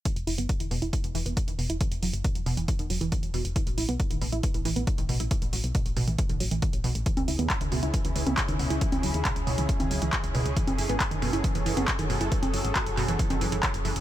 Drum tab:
HH |xxoxxxoxxxoxxxox|xxoxxxoxxxoxxxox|xxoxxxoxxxoxxxox|xxoxxxoxxxoxxxox|
CP |----------------|----------------|----------------|----------------|
CG |----------------|----------------|----------------|----------------|
BD |o---o---o---o---|o---o---o---o---|o---o---o---o---|o---o---o---o---|

HH |xxoxxxoxxxoxxxox|xxoxxxoxxxoxxxox|xxoxxxoxxxoxxxox|xxoxxxoxxxoxxxox|
CP |----x-------x---|----x-------x---|----x-------x---|----x-x-----x---|
CG |-o---------o----|-o-------o------|-o---------o----|-o-------o------|
BD |o---o---o---o---|o---o---o---o---|o---o---o---o---|o---o---o---o---|